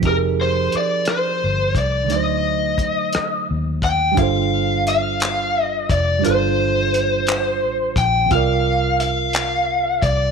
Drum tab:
HH |x-xx-x|x-xx-x|x-xx-x|x-xx-x|
CP |------|------|---x--|---x--|
SD |---r--|---r--|------|------|
BD |o----o|--o--o|o----o|-----o|

HH |x-xx-x|
CP |---x--|
SD |------|
BD |o----o|